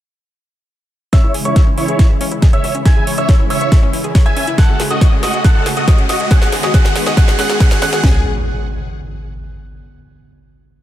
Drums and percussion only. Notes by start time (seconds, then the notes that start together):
1.13 kick, snare, closed hi-hat
1.34 open hi-hat
1.45 closed hi-hat
1.56 kick, snare, closed hi-hat
1.78 open hi-hat
1.88 closed hi-hat
1.99 kick, snare, closed hi-hat
2.21 open hi-hat
2.31 closed hi-hat
2.42 kick, snare, closed hi-hat
2.53 closed hi-hat
2.64 open hi-hat
2.75 closed hi-hat
2.85 kick, snare, closed hi-hat
3.07 open hi-hat
3.18 closed hi-hat
3.29 kick, snare, closed hi-hat
3.50 open hi-hat
3.61 closed hi-hat
3.72 kick, snare, closed hi-hat
3.93 open hi-hat
4.04 closed hi-hat
4.15 kick, snare, closed hi-hat
4.26 closed hi-hat
4.37 open hi-hat
4.47 closed hi-hat
4.58 kick, snare, closed hi-hat
4.80 snare, open hi-hat
4.91 closed hi-hat
5.01 kick, snare, closed hi-hat
5.23 snare, open hi-hat
5.34 closed hi-hat
5.44 kick, snare, closed hi-hat
5.66 snare, open hi-hat
5.77 closed hi-hat
5.88 kick, snare, closed hi-hat
5.98 closed hi-hat
6.09 snare, open hi-hat
6.20 closed hi-hat
6.31 kick, snare, closed hi-hat
6.42 snare
6.52 snare, open hi-hat
6.63 snare, closed hi-hat
6.74 kick, snare, closed hi-hat
6.85 snare
6.96 snare, open hi-hat
7.06 snare, closed hi-hat
7.17 kick, snare, closed hi-hat
7.28 snare
7.39 snare, open hi-hat
7.50 snare, closed hi-hat
7.60 kick, snare, closed hi-hat
7.71 snare, closed hi-hat
7.82 snare, open hi-hat
7.93 snare, closed hi-hat
8.03 kick, snare